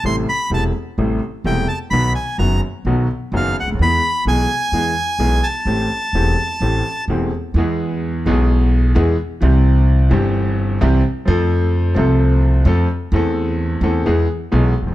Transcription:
<<
  \new Staff \with { instrumentName = "Bandoneon" } { \time 4/4 \key a \minor \tempo 4 = 128 c'''8 b''8 a''8 r4. g''8 a''8 | b''8 gis''8 bes''8 r4. f''8 fis''8 | b''4 gis''2~ gis''8 a''8~ | a''2. r4 |
r1 | r1 | r1 | r1 | }
  \new Staff \with { instrumentName = "Grand piano" } { \clef bass \time 4/4 \key a \minor <a,, a, c g a e'>8 r8 <e,, e, c g a e'>8 r8 <a,, a, c g a e'>8 r8 <e,, e, c g a e'>8 r8 | <b,, b, dis fis b fis'>8 r8 <fis,, fis, dis fis b fis'>8 r8 <b,, b, dis fis b fis'>8 r8 <fis,, fis, dis fis b fis'>8 r32 cis,32 d,32 dis,32 | <e, e gis b gis'>8 r8 <b,, b, e gis b gis'>8 r8 <e, e gis b gis'>8 r8 <b,, b, e gis b gis'>8 r8 | <a,, a, e a c' g'>8 r8 <e,, e, e a c' g'>8 r8 <a,, a, e a c' g'>8 r8 <e,, e, e a c' g'>8 r8 |
<e, e gis b gis'>4. <b,, b, e gis b gis'>4. <e, e gis b gis'>8 r8 | <c, c e g c' g'>4. <g,, g, e g c' g'>4. <c, c e g c' g'>8 r8 | <f, f a c' a'>4. <c, c f a c' a'>4. <f, f a c' a'>8 r8 | <e, e a c' a'>4. <e, e a c' a'>8 <e, e gis b gis'>8 r8 <b,, b, e gis b gis'>8 r32 e,32 f,32 r32 | }
  \new Staff \with { instrumentName = "Upright bass" } { \clef bass \time 4/4 \key a \minor a,,16. r8 r32 e,,16. r8 r32 a,,16. r8 r32 e,,16. r8 r32 | b,,16. r8 r32 fis,,16. r8 r32 b,,16. r8 r32 fis,,16. r16 cis,32 d,32 dis,32 | e,16. r8 r32 b,,16. r8 r32 e,16. r8 r32 b,,16. r8 r32 | a,,16. r8 r32 e,,16. r8 r32 a,,16. r8 r32 e,,16. r8 r32 |
e,4~ e,16. r32 b,,4~ b,,16. r32 e,16. r8 r32 | c,4~ c,16. r32 g,,4~ g,,16. r32 c,16. r8 r32 | f,4~ f,16. r32 c,4~ c,16. r32 f,16. r8 r32 | e,4~ e,16. r32 e,16. r32 e,16. r8 r32 b,,16. r16 e,,32 f,,32 r32 | }
>>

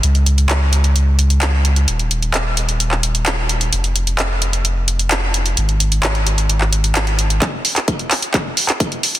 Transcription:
<<
  \new Staff \with { instrumentName = "Sub bass" } { \clef bass \time 4/4 \key f \minor \tempo 4 = 130 des,1 | ees,,1 | f,,1 | aes,,1 |
r1 | }
  \new DrumStaff \with { instrumentName = "Drums" } \drummode { \time 4/4 hh16 hh16 hh16 hh16 <hc hh>8 hh16 hh16 hh8 hh16 hh16 <hc hh>8 hh16 hh16 | hh16 hh16 hh16 hh16 <hc hh>8 hh16 hh16 hh16 hc16 hh16 hh16 <hc hh>8 hh16 hh16 | hh16 hh16 hh16 hh16 <hc hh>8 hh16 hh16 hh8 hh16 hh16 <hc hh>8 hh16 hh16 | hh16 hh16 hh16 hh16 <hc hh>16 hh16 hh16 hh16 hh16 hc16 hh16 hh16 <hc hh>16 hh16 hh16 hh16 |
<hc hh bd>8 hho16 <hc hh>16 <hh bd>16 hh16 <hc hho>16 hh16 <hc hh bd>8 hho16 <hc hh>16 <hh bd>16 hh16 hho16 hh16 | }
>>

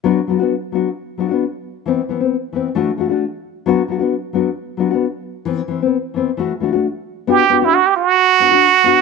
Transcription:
<<
  \new Staff \with { instrumentName = "Muted trumpet" } { \time 4/4 \key b \phrygian \tempo 4 = 133 r1 | r1 | r1 | r1 |
g'8. e'16 fis'16 g'16 fis'2~ fis'8 | }
  \new Staff \with { instrumentName = "Nylon-string guitar" } { \time 4/4 \key b \phrygian <fis b d' fis'>16 r16 <fis b d' fis'>16 <b d' fis'>16 r8 <fis b d' fis'>16 r8. <fis b d' fis'>16 <b d' fis'>16 r4 | <e b c'>16 r16 <e b c'>16 <b c'>16 r8 <e b c'>16 r16 <e a d' fis'>16 r16 <e a d' fis'>16 <a d' fis'>16 r4 | <fis b d' fis'>16 r16 <fis b d' fis'>16 <b d' fis'>16 r8 <fis b d' fis'>16 r8. <fis b d' fis'>16 <b d' fis'>16 r4 | <e b c'>16 r16 <e c'>16 <b c'>16 r8 <e b c'>16 r16 <e a fis'>16 r16 <e a d' fis'>16 <a d' fis'>16 r4 |
<b d' fis'>16 r16 <b d' fis'>16 <d' fis'>16 r4. <b d' fis'>16 <d' fis'>16 r8 <b d' fis'>16 r16 | }
>>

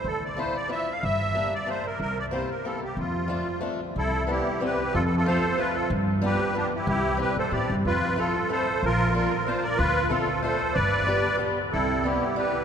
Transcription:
<<
  \new Staff \with { instrumentName = "Accordion" } { \time 3/4 \key f \major \tempo 4 = 186 a'8 d''8 c''8 d''8 \tuplet 3/2 { e''4 f''8 } | e''4. d''8 c''8 bes'8 | bes'8 d''8 c''8 bes'8 a'8 g'8 | f'2 r4 |
\key c \major <e' a'>4 <e' g'>4 <g' b'>4 | \tuplet 3/2 { <f' a'>8 a'8 <f' a'>8 } <a' c''>4 <f' b'>8 <f' a'>8 | r4 <g' b'>4 <d' g'>8 <e' g'>8 | <e' g'>4 <g' b'>8 <a' c''>8 <g' d''>8. r16 |
<f' b'>4 <f' a'>4 <a' c''>4 | <f' bes'>4 <f' bes'>4 <f' c''>8 <bes' d''>8 | <f' b'>4 <f' a'>4 <a' c''>4 | <b' d''>2 r4 |
<e' a'>4 <e' g'>4 <g' b'>4 | }
  \new Staff \with { instrumentName = "Clarinet" } { \time 3/4 \key f \major r2. | r2. | r2. | r2. |
\key c \major r2. | r2. | r2. | r2. |
r2. | r2. | r2. | r2. |
c'4 b4 e'4 | }
  \new Staff \with { instrumentName = "Steel-string acoustic guitar" } { \time 3/4 \key f \major r4 <f a d' e'>8 r8 <f a d' e'>8 r8 | r4 <a bes d' g'>8 r8 <a bes d' g'>8 r8 | r4 <bes c' e' g'>8 r8 <bes c' e' g'>8 r8 | r4 <a c' d' f'>8 r8 <a c' d' f'>8 r8 |
\key c \major r4 <g b c' e'>8 r8 <g b c' e'>8 r8 | r4 <f a c' f'>8 r8 <f a c' f'>8 r8 | r4 <g b d' f'>8 r8 <g b d' f'>8 r8 | r4 <g c' d' e'>8 r8 <g c' d' e'>8 r8 |
r4 <a c' e' f'>8 r8 <a c' e' f'>8 r8 | r4 <bes c' d' f'>8 r8 <bes c' d' f'>8 r8 | r4 <a c' d' f'>8 r8 <a c' d' f'>8 r8 | r4 <g b d' g'>8 r8 <g b d' g'>8 r8 |
r4 <g b c' e'>8 r8 <g b c' e'>8 r8 | }
  \new Staff \with { instrumentName = "Upright bass" } { \clef bass \time 3/4 \key f \major d,2 r4 | g,,2 r4 | c,2 r4 | f,2 r4 |
\key c \major c,2 r4 | f,2 r4 | g,2 r4 | c,4. b,8 a,8 g,8 |
f,2 r4 | bes,,2 r4 | d,2 r4 | g,,2 r4 |
c,2 r4 | }
>>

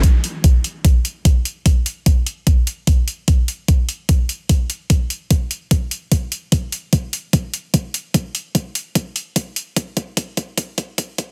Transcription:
\new DrumStaff \with { instrumentName = "Drums" } \drummode { \time 4/4 \tempo 4 = 148 <hh bd>8 hh8 <hh bd>8 hh8 <hh bd>8 hh8 <hh bd>8 hh8 | <hh bd>8 hh8 <hh bd>8 hh8 <hh bd>8 hh8 <hh bd>8 hh8 | <hh bd>8 hh8 <hh bd>8 hh8 <hh bd>8 hh8 <hh bd>8 hh8 | <hh bd>8 hh8 <hh bd>8 hh8 <hh bd>8 hh8 <hh bd>8 hh8 |
<hh bd>8 hh8 <hh bd>8 hh8 <hh bd>8 hh8 <hh bd>8 hh8 | <hh bd>8 hh8 <hh bd>8 hh8 <hh bd>8 hh8 <hh bd>8 hh8 | <hh bd>8 <hh bd>8 <hh bd>8 <hh bd>8 <hh bd>8 <hh bd>8 <hh bd>8 <hh bd>8 | }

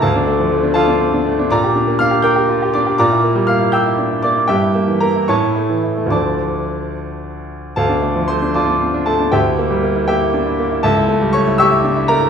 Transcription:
\new Staff \with { instrumentName = "Grand piano" } { \time 6/8 \key d \minor \tempo 4. = 79 << { <a' f'' a''>4. <a' f'' a''>4. | <d'' bes'' d'''>4 <f'' f'''>8 <g'' d''' g'''>4 <d'' d'''>8 | <d'' bes'' d'''>4 <f'' f'''>8 <g'' e''' g'''>4 <d'' d'''>8 | <g' e'' g''>4 <bes' bes''>8 <cis'' a'' cis'''>4. |
<d'' a'' d'''>4. r4. | <a' f'' a''>4 <c'' c'''>8 <d'' a'' d'''>4 <a' a''>8 | <g' e'' g''>4. <g' e'' g''>4. | <a' e'' a''>4 <cis'' cis'''>8 <e'' cis''' e'''>4 <bes' bes''>8 | } \\ { d,16 d'16 a16 f16 a16 d'16 f'16 d'16 c'16 d'16 a16 d'16 | bes,16 g'16 d'16 bes16 d'16 g'16 bes'16 g'16 f'16 g'16 d'16 g'16 | bes,16 e'16 bes16 g16 bes16 e'16 g'16 e'16 d'16 e'16 bes16 e'16 | g,16 e'16 bes16 e16 bes16 e'16 a,16 e'16 a16 e16 e'16 a16 |
<d, f a d'>2. | d,16 d'16 a16 f16 a16 d'16 f'16 d'16 c'16 d'16 a16 d'16 | d,16 e'16 bes16 g16 bes16 e'16 bes16 e'16 d'16 e'16 bes16 e'16 | cis,16 e'16 a16 g16 a16 e'16 g'16 e'16 d'16 e'16 a16 e'16 | } >> }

